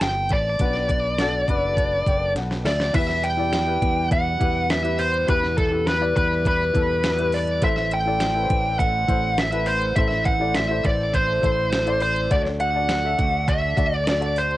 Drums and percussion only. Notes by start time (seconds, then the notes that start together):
0.01 snare, closed hi-hat
0.29 kick, closed hi-hat
0.59 kick, closed hi-hat
0.74 snare
0.89 kick, closed hi-hat
1.18 snare, closed hi-hat
1.48 kick, closed hi-hat
1.77 kick, closed hi-hat
2.06 kick, closed hi-hat
2.36 snare, closed hi-hat
2.51 snare
2.65 snare, open hi-hat
2.80 snare
2.94 kick, closed hi-hat, crash
3.09 snare
3.24 closed hi-hat
3.53 snare, closed hi-hat
3.82 kick, closed hi-hat
4.11 kick, closed hi-hat
4.41 kick, closed hi-hat
4.70 snare, closed hi-hat
4.85 closed hi-hat
4.99 open hi-hat
5.14 closed hi-hat
5.28 kick, closed hi-hat
5.43 snare
5.58 kick, closed hi-hat
5.87 snare, closed hi-hat
6.16 kick, closed hi-hat
6.45 kick, closed hi-hat
6.75 kick, closed hi-hat
7.04 snare, closed hi-hat
7.19 closed hi-hat
7.32 open hi-hat
7.47 closed hi-hat
7.62 kick, closed hi-hat
7.76 snare
7.91 closed hi-hat
8.20 snare, closed hi-hat
8.50 kick, closed hi-hat
8.79 kick, closed hi-hat
9.09 kick, closed hi-hat
9.38 snare, closed hi-hat
9.52 closed hi-hat
9.66 open hi-hat
9.82 closed hi-hat
9.96 kick, closed hi-hat
10.11 snare
10.25 kick, closed hi-hat
10.54 snare, closed hi-hat
10.84 kick, closed hi-hat
11.14 kick, closed hi-hat
11.43 kick, closed hi-hat
11.72 snare, closed hi-hat
11.87 closed hi-hat
12.00 open hi-hat
12.16 closed hi-hat
12.31 kick, closed hi-hat
12.45 snare
12.60 closed hi-hat
12.89 snare, closed hi-hat
13.19 kick, closed hi-hat
13.48 kick, closed hi-hat
13.77 kick, closed hi-hat
14.07 snare, closed hi-hat
14.22 closed hi-hat
14.36 open hi-hat
14.51 closed hi-hat